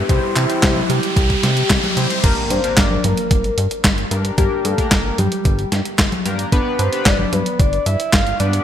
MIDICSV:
0, 0, Header, 1, 8, 480
1, 0, Start_track
1, 0, Tempo, 535714
1, 84, Time_signature, 4, 2, 24, 8
1, 7740, End_track
2, 0, Start_track
2, 0, Title_t, "Soft synth lead"
2, 0, Program_c, 0, 80
2, 84, Note_on_c, 0, 67, 97
2, 324, Note_on_c, 0, 64, 98
2, 337, Note_off_c, 0, 67, 0
2, 800, Note_off_c, 0, 64, 0
2, 805, Note_on_c, 0, 67, 94
2, 1028, Note_off_c, 0, 67, 0
2, 1045, Note_on_c, 0, 67, 86
2, 1729, Note_off_c, 0, 67, 0
2, 2004, Note_on_c, 0, 70, 90
2, 2243, Note_on_c, 0, 72, 99
2, 2257, Note_off_c, 0, 70, 0
2, 2485, Note_on_c, 0, 74, 112
2, 2498, Note_off_c, 0, 72, 0
2, 2723, Note_on_c, 0, 70, 96
2, 2737, Note_off_c, 0, 74, 0
2, 3204, Note_off_c, 0, 70, 0
2, 3925, Note_on_c, 0, 67, 93
2, 4165, Note_on_c, 0, 69, 102
2, 4178, Note_off_c, 0, 67, 0
2, 4405, Note_on_c, 0, 70, 111
2, 4418, Note_off_c, 0, 69, 0
2, 4640, Note_off_c, 0, 70, 0
2, 4645, Note_on_c, 0, 67, 94
2, 5091, Note_off_c, 0, 67, 0
2, 5845, Note_on_c, 0, 71, 99
2, 6068, Note_off_c, 0, 71, 0
2, 6084, Note_on_c, 0, 72, 96
2, 6325, Note_on_c, 0, 74, 104
2, 6338, Note_off_c, 0, 72, 0
2, 6564, Note_on_c, 0, 71, 96
2, 6578, Note_off_c, 0, 74, 0
2, 6804, Note_on_c, 0, 74, 103
2, 6818, Note_off_c, 0, 71, 0
2, 7039, Note_off_c, 0, 74, 0
2, 7045, Note_on_c, 0, 76, 102
2, 7268, Note_off_c, 0, 76, 0
2, 7285, Note_on_c, 0, 77, 113
2, 7508, Note_off_c, 0, 77, 0
2, 7525, Note_on_c, 0, 74, 102
2, 7740, Note_off_c, 0, 74, 0
2, 7740, End_track
3, 0, Start_track
3, 0, Title_t, "Analog polysynth"
3, 0, Program_c, 1, 90
3, 84, Note_on_c, 1, 60, 98
3, 84, Note_on_c, 1, 64, 87
3, 84, Note_on_c, 1, 67, 89
3, 84, Note_on_c, 1, 72, 108
3, 415, Note_off_c, 1, 60, 0
3, 415, Note_off_c, 1, 64, 0
3, 416, Note_off_c, 1, 67, 0
3, 416, Note_off_c, 1, 72, 0
3, 444, Note_on_c, 1, 60, 98
3, 444, Note_on_c, 1, 64, 92
3, 444, Note_on_c, 1, 67, 88
3, 444, Note_on_c, 1, 72, 109
3, 709, Note_off_c, 1, 60, 0
3, 709, Note_off_c, 1, 64, 0
3, 709, Note_off_c, 1, 67, 0
3, 709, Note_off_c, 1, 72, 0
3, 1765, Note_on_c, 1, 60, 81
3, 1765, Note_on_c, 1, 64, 72
3, 1765, Note_on_c, 1, 67, 75
3, 1765, Note_on_c, 1, 72, 91
3, 1976, Note_off_c, 1, 60, 0
3, 1976, Note_off_c, 1, 64, 0
3, 1976, Note_off_c, 1, 67, 0
3, 1976, Note_off_c, 1, 72, 0
3, 2004, Note_on_c, 1, 62, 88
3, 2004, Note_on_c, 1, 70, 107
3, 2005, Note_on_c, 1, 58, 97
3, 2005, Note_on_c, 1, 67, 87
3, 2336, Note_off_c, 1, 58, 0
3, 2336, Note_off_c, 1, 62, 0
3, 2336, Note_off_c, 1, 67, 0
3, 2336, Note_off_c, 1, 70, 0
3, 2364, Note_on_c, 1, 58, 100
3, 2364, Note_on_c, 1, 62, 94
3, 2364, Note_on_c, 1, 67, 92
3, 2364, Note_on_c, 1, 70, 108
3, 2629, Note_off_c, 1, 58, 0
3, 2629, Note_off_c, 1, 62, 0
3, 2629, Note_off_c, 1, 67, 0
3, 2629, Note_off_c, 1, 70, 0
3, 3684, Note_on_c, 1, 58, 82
3, 3684, Note_on_c, 1, 62, 76
3, 3684, Note_on_c, 1, 67, 76
3, 3684, Note_on_c, 1, 70, 91
3, 3895, Note_off_c, 1, 58, 0
3, 3896, Note_off_c, 1, 62, 0
3, 3896, Note_off_c, 1, 67, 0
3, 3896, Note_off_c, 1, 70, 0
3, 3924, Note_on_c, 1, 58, 100
3, 3924, Note_on_c, 1, 62, 90
3, 3924, Note_on_c, 1, 67, 90
3, 3924, Note_on_c, 1, 70, 105
3, 4255, Note_off_c, 1, 58, 0
3, 4255, Note_off_c, 1, 62, 0
3, 4255, Note_off_c, 1, 67, 0
3, 4255, Note_off_c, 1, 70, 0
3, 4284, Note_on_c, 1, 58, 98
3, 4284, Note_on_c, 1, 62, 88
3, 4284, Note_on_c, 1, 67, 91
3, 4284, Note_on_c, 1, 70, 111
3, 4549, Note_off_c, 1, 58, 0
3, 4549, Note_off_c, 1, 62, 0
3, 4549, Note_off_c, 1, 67, 0
3, 4549, Note_off_c, 1, 70, 0
3, 5604, Note_on_c, 1, 58, 81
3, 5604, Note_on_c, 1, 62, 75
3, 5605, Note_on_c, 1, 67, 74
3, 5605, Note_on_c, 1, 70, 91
3, 5816, Note_off_c, 1, 58, 0
3, 5816, Note_off_c, 1, 62, 0
3, 5816, Note_off_c, 1, 67, 0
3, 5816, Note_off_c, 1, 70, 0
3, 5845, Note_on_c, 1, 59, 97
3, 5845, Note_on_c, 1, 62, 88
3, 5845, Note_on_c, 1, 67, 90
3, 5845, Note_on_c, 1, 71, 110
3, 6176, Note_off_c, 1, 59, 0
3, 6176, Note_off_c, 1, 62, 0
3, 6176, Note_off_c, 1, 67, 0
3, 6176, Note_off_c, 1, 71, 0
3, 6205, Note_on_c, 1, 59, 97
3, 6205, Note_on_c, 1, 62, 91
3, 6205, Note_on_c, 1, 67, 92
3, 6205, Note_on_c, 1, 71, 109
3, 6469, Note_off_c, 1, 59, 0
3, 6469, Note_off_c, 1, 62, 0
3, 6469, Note_off_c, 1, 67, 0
3, 6469, Note_off_c, 1, 71, 0
3, 7525, Note_on_c, 1, 67, 74
3, 7525, Note_on_c, 1, 71, 91
3, 7526, Note_on_c, 1, 59, 80
3, 7526, Note_on_c, 1, 62, 74
3, 7736, Note_off_c, 1, 59, 0
3, 7736, Note_off_c, 1, 62, 0
3, 7736, Note_off_c, 1, 67, 0
3, 7736, Note_off_c, 1, 71, 0
3, 7740, End_track
4, 0, Start_track
4, 0, Title_t, "Analog synth bass"
4, 0, Program_c, 2, 38
4, 84, Note_on_c, 2, 36, 101
4, 175, Note_off_c, 2, 36, 0
4, 324, Note_on_c, 2, 48, 100
4, 415, Note_off_c, 2, 48, 0
4, 564, Note_on_c, 2, 36, 85
4, 745, Note_off_c, 2, 36, 0
4, 804, Note_on_c, 2, 48, 98
4, 894, Note_off_c, 2, 48, 0
4, 1044, Note_on_c, 2, 36, 92
4, 1225, Note_off_c, 2, 36, 0
4, 1284, Note_on_c, 2, 48, 89
4, 1465, Note_off_c, 2, 48, 0
4, 1524, Note_on_c, 2, 36, 102
4, 1615, Note_off_c, 2, 36, 0
4, 1764, Note_on_c, 2, 48, 81
4, 1854, Note_off_c, 2, 48, 0
4, 2004, Note_on_c, 2, 31, 102
4, 2094, Note_off_c, 2, 31, 0
4, 2244, Note_on_c, 2, 43, 103
4, 2335, Note_off_c, 2, 43, 0
4, 2484, Note_on_c, 2, 31, 87
4, 2665, Note_off_c, 2, 31, 0
4, 2724, Note_on_c, 2, 43, 101
4, 2815, Note_off_c, 2, 43, 0
4, 2964, Note_on_c, 2, 31, 86
4, 3145, Note_off_c, 2, 31, 0
4, 3205, Note_on_c, 2, 43, 89
4, 3295, Note_off_c, 2, 43, 0
4, 3444, Note_on_c, 2, 31, 83
4, 3625, Note_off_c, 2, 31, 0
4, 3684, Note_on_c, 2, 43, 90
4, 3864, Note_off_c, 2, 43, 0
4, 3924, Note_on_c, 2, 31, 101
4, 4015, Note_off_c, 2, 31, 0
4, 4165, Note_on_c, 2, 43, 102
4, 4255, Note_off_c, 2, 43, 0
4, 4404, Note_on_c, 2, 31, 84
4, 4585, Note_off_c, 2, 31, 0
4, 4644, Note_on_c, 2, 43, 99
4, 4734, Note_off_c, 2, 43, 0
4, 4884, Note_on_c, 2, 31, 96
4, 5065, Note_off_c, 2, 31, 0
4, 5124, Note_on_c, 2, 43, 81
4, 5215, Note_off_c, 2, 43, 0
4, 5365, Note_on_c, 2, 31, 86
4, 5455, Note_off_c, 2, 31, 0
4, 5605, Note_on_c, 2, 43, 88
4, 5785, Note_off_c, 2, 43, 0
4, 5845, Note_on_c, 2, 31, 100
4, 5935, Note_off_c, 2, 31, 0
4, 6085, Note_on_c, 2, 43, 99
4, 6175, Note_off_c, 2, 43, 0
4, 6325, Note_on_c, 2, 31, 87
4, 6505, Note_off_c, 2, 31, 0
4, 6565, Note_on_c, 2, 43, 99
4, 6655, Note_off_c, 2, 43, 0
4, 6805, Note_on_c, 2, 31, 90
4, 6985, Note_off_c, 2, 31, 0
4, 7045, Note_on_c, 2, 43, 84
4, 7135, Note_off_c, 2, 43, 0
4, 7285, Note_on_c, 2, 31, 81
4, 7465, Note_off_c, 2, 31, 0
4, 7525, Note_on_c, 2, 43, 90
4, 7705, Note_off_c, 2, 43, 0
4, 7740, End_track
5, 0, Start_track
5, 0, Title_t, "Impact"
5, 0, Program_c, 3, 103
5, 2004, Note_on_c, 3, 60, 79
5, 3924, Note_off_c, 3, 60, 0
5, 7740, End_track
6, 0, Start_track
6, 0, Title_t, "Riser"
6, 0, Program_c, 4, 103
6, 0, Note_on_c, 4, 60, 78
6, 2004, Note_off_c, 4, 60, 0
6, 7740, End_track
7, 0, Start_track
7, 0, Title_t, "Swell"
7, 0, Program_c, 5, 103
7, 1044, Note_on_c, 5, 60, 75
7, 2004, Note_off_c, 5, 60, 0
7, 7740, End_track
8, 0, Start_track
8, 0, Title_t, "Drums"
8, 84, Note_on_c, 9, 36, 125
8, 84, Note_on_c, 9, 42, 74
8, 173, Note_off_c, 9, 36, 0
8, 174, Note_off_c, 9, 42, 0
8, 324, Note_on_c, 9, 39, 70
8, 324, Note_on_c, 9, 42, 77
8, 414, Note_off_c, 9, 39, 0
8, 414, Note_off_c, 9, 42, 0
8, 444, Note_on_c, 9, 42, 49
8, 534, Note_off_c, 9, 42, 0
8, 564, Note_on_c, 9, 36, 125
8, 564, Note_on_c, 9, 38, 125
8, 564, Note_on_c, 9, 39, 90
8, 564, Note_on_c, 9, 42, 75
8, 654, Note_off_c, 9, 36, 0
8, 654, Note_off_c, 9, 38, 0
8, 654, Note_off_c, 9, 39, 0
8, 654, Note_off_c, 9, 42, 0
8, 684, Note_on_c, 9, 63, 60
8, 774, Note_off_c, 9, 63, 0
8, 804, Note_on_c, 9, 42, 76
8, 894, Note_off_c, 9, 42, 0
8, 925, Note_on_c, 9, 42, 50
8, 1014, Note_off_c, 9, 42, 0
8, 1044, Note_on_c, 9, 36, 125
8, 1045, Note_on_c, 9, 42, 74
8, 1133, Note_off_c, 9, 36, 0
8, 1134, Note_off_c, 9, 42, 0
8, 1164, Note_on_c, 9, 36, 64
8, 1165, Note_on_c, 9, 42, 35
8, 1254, Note_off_c, 9, 36, 0
8, 1254, Note_off_c, 9, 42, 0
8, 1285, Note_on_c, 9, 38, 62
8, 1285, Note_on_c, 9, 42, 73
8, 1374, Note_off_c, 9, 38, 0
8, 1374, Note_off_c, 9, 42, 0
8, 1405, Note_on_c, 9, 42, 51
8, 1494, Note_off_c, 9, 42, 0
8, 1524, Note_on_c, 9, 36, 125
8, 1524, Note_on_c, 9, 38, 126
8, 1524, Note_on_c, 9, 39, 89
8, 1524, Note_on_c, 9, 42, 77
8, 1614, Note_off_c, 9, 36, 0
8, 1614, Note_off_c, 9, 38, 0
8, 1614, Note_off_c, 9, 39, 0
8, 1614, Note_off_c, 9, 42, 0
8, 1645, Note_on_c, 9, 42, 35
8, 1645, Note_on_c, 9, 63, 59
8, 1734, Note_off_c, 9, 42, 0
8, 1734, Note_off_c, 9, 63, 0
8, 1764, Note_on_c, 9, 42, 76
8, 1854, Note_off_c, 9, 42, 0
8, 1885, Note_on_c, 9, 42, 50
8, 1974, Note_off_c, 9, 42, 0
8, 2004, Note_on_c, 9, 36, 120
8, 2004, Note_on_c, 9, 42, 85
8, 2004, Note_on_c, 9, 49, 103
8, 2094, Note_off_c, 9, 36, 0
8, 2094, Note_off_c, 9, 42, 0
8, 2094, Note_off_c, 9, 49, 0
8, 2244, Note_on_c, 9, 42, 83
8, 2334, Note_off_c, 9, 42, 0
8, 2365, Note_on_c, 9, 42, 55
8, 2454, Note_off_c, 9, 42, 0
8, 2484, Note_on_c, 9, 36, 122
8, 2485, Note_on_c, 9, 38, 120
8, 2485, Note_on_c, 9, 39, 97
8, 2485, Note_on_c, 9, 42, 83
8, 2574, Note_off_c, 9, 36, 0
8, 2574, Note_off_c, 9, 38, 0
8, 2574, Note_off_c, 9, 39, 0
8, 2574, Note_off_c, 9, 42, 0
8, 2604, Note_on_c, 9, 63, 63
8, 2694, Note_off_c, 9, 63, 0
8, 2725, Note_on_c, 9, 42, 81
8, 2725, Note_on_c, 9, 63, 61
8, 2814, Note_off_c, 9, 42, 0
8, 2814, Note_off_c, 9, 63, 0
8, 2844, Note_on_c, 9, 42, 56
8, 2934, Note_off_c, 9, 42, 0
8, 2964, Note_on_c, 9, 36, 121
8, 2964, Note_on_c, 9, 42, 84
8, 3054, Note_off_c, 9, 36, 0
8, 3054, Note_off_c, 9, 42, 0
8, 3085, Note_on_c, 9, 42, 38
8, 3175, Note_off_c, 9, 42, 0
8, 3205, Note_on_c, 9, 42, 83
8, 3295, Note_off_c, 9, 42, 0
8, 3325, Note_on_c, 9, 42, 56
8, 3414, Note_off_c, 9, 42, 0
8, 3444, Note_on_c, 9, 36, 121
8, 3445, Note_on_c, 9, 38, 120
8, 3445, Note_on_c, 9, 39, 96
8, 3445, Note_on_c, 9, 42, 87
8, 3534, Note_off_c, 9, 36, 0
8, 3535, Note_off_c, 9, 38, 0
8, 3535, Note_off_c, 9, 39, 0
8, 3535, Note_off_c, 9, 42, 0
8, 3565, Note_on_c, 9, 42, 39
8, 3655, Note_off_c, 9, 42, 0
8, 3685, Note_on_c, 9, 42, 84
8, 3775, Note_off_c, 9, 42, 0
8, 3805, Note_on_c, 9, 42, 54
8, 3895, Note_off_c, 9, 42, 0
8, 3924, Note_on_c, 9, 36, 124
8, 3925, Note_on_c, 9, 42, 79
8, 4014, Note_off_c, 9, 36, 0
8, 4015, Note_off_c, 9, 42, 0
8, 4165, Note_on_c, 9, 42, 83
8, 4255, Note_off_c, 9, 42, 0
8, 4284, Note_on_c, 9, 36, 66
8, 4285, Note_on_c, 9, 42, 54
8, 4374, Note_off_c, 9, 36, 0
8, 4375, Note_off_c, 9, 42, 0
8, 4404, Note_on_c, 9, 36, 123
8, 4405, Note_on_c, 9, 38, 127
8, 4405, Note_on_c, 9, 39, 96
8, 4405, Note_on_c, 9, 42, 82
8, 4494, Note_off_c, 9, 36, 0
8, 4495, Note_off_c, 9, 38, 0
8, 4495, Note_off_c, 9, 39, 0
8, 4495, Note_off_c, 9, 42, 0
8, 4645, Note_on_c, 9, 42, 81
8, 4645, Note_on_c, 9, 63, 58
8, 4734, Note_off_c, 9, 42, 0
8, 4734, Note_off_c, 9, 63, 0
8, 4765, Note_on_c, 9, 42, 53
8, 4854, Note_off_c, 9, 42, 0
8, 4884, Note_on_c, 9, 36, 125
8, 4885, Note_on_c, 9, 42, 80
8, 4974, Note_off_c, 9, 36, 0
8, 4974, Note_off_c, 9, 42, 0
8, 5005, Note_on_c, 9, 42, 38
8, 5095, Note_off_c, 9, 42, 0
8, 5125, Note_on_c, 9, 38, 64
8, 5125, Note_on_c, 9, 42, 82
8, 5215, Note_off_c, 9, 38, 0
8, 5215, Note_off_c, 9, 42, 0
8, 5245, Note_on_c, 9, 42, 53
8, 5335, Note_off_c, 9, 42, 0
8, 5365, Note_on_c, 9, 36, 120
8, 5365, Note_on_c, 9, 38, 127
8, 5365, Note_on_c, 9, 39, 96
8, 5365, Note_on_c, 9, 42, 80
8, 5454, Note_off_c, 9, 36, 0
8, 5455, Note_off_c, 9, 38, 0
8, 5455, Note_off_c, 9, 39, 0
8, 5455, Note_off_c, 9, 42, 0
8, 5485, Note_on_c, 9, 42, 37
8, 5485, Note_on_c, 9, 63, 62
8, 5575, Note_off_c, 9, 42, 0
8, 5575, Note_off_c, 9, 63, 0
8, 5605, Note_on_c, 9, 42, 84
8, 5695, Note_off_c, 9, 42, 0
8, 5725, Note_on_c, 9, 42, 54
8, 5815, Note_off_c, 9, 42, 0
8, 5845, Note_on_c, 9, 36, 123
8, 5845, Note_on_c, 9, 42, 77
8, 5934, Note_off_c, 9, 36, 0
8, 5935, Note_off_c, 9, 42, 0
8, 6085, Note_on_c, 9, 42, 80
8, 6175, Note_off_c, 9, 42, 0
8, 6205, Note_on_c, 9, 42, 52
8, 6295, Note_off_c, 9, 42, 0
8, 6325, Note_on_c, 9, 36, 125
8, 6325, Note_on_c, 9, 38, 127
8, 6325, Note_on_c, 9, 39, 94
8, 6325, Note_on_c, 9, 42, 79
8, 6415, Note_off_c, 9, 36, 0
8, 6415, Note_off_c, 9, 38, 0
8, 6415, Note_off_c, 9, 39, 0
8, 6415, Note_off_c, 9, 42, 0
8, 6445, Note_on_c, 9, 63, 59
8, 6535, Note_off_c, 9, 63, 0
8, 6565, Note_on_c, 9, 42, 77
8, 6565, Note_on_c, 9, 63, 58
8, 6655, Note_off_c, 9, 42, 0
8, 6655, Note_off_c, 9, 63, 0
8, 6685, Note_on_c, 9, 42, 53
8, 6775, Note_off_c, 9, 42, 0
8, 6805, Note_on_c, 9, 36, 127
8, 6805, Note_on_c, 9, 42, 78
8, 6895, Note_off_c, 9, 36, 0
8, 6895, Note_off_c, 9, 42, 0
8, 6925, Note_on_c, 9, 42, 36
8, 7015, Note_off_c, 9, 42, 0
8, 7045, Note_on_c, 9, 42, 78
8, 7135, Note_off_c, 9, 42, 0
8, 7165, Note_on_c, 9, 42, 52
8, 7255, Note_off_c, 9, 42, 0
8, 7285, Note_on_c, 9, 36, 123
8, 7285, Note_on_c, 9, 38, 127
8, 7285, Note_on_c, 9, 39, 94
8, 7285, Note_on_c, 9, 42, 79
8, 7375, Note_off_c, 9, 36, 0
8, 7375, Note_off_c, 9, 38, 0
8, 7375, Note_off_c, 9, 39, 0
8, 7375, Note_off_c, 9, 42, 0
8, 7406, Note_on_c, 9, 42, 37
8, 7495, Note_off_c, 9, 42, 0
8, 7526, Note_on_c, 9, 42, 77
8, 7615, Note_off_c, 9, 42, 0
8, 7646, Note_on_c, 9, 42, 52
8, 7735, Note_off_c, 9, 42, 0
8, 7740, End_track
0, 0, End_of_file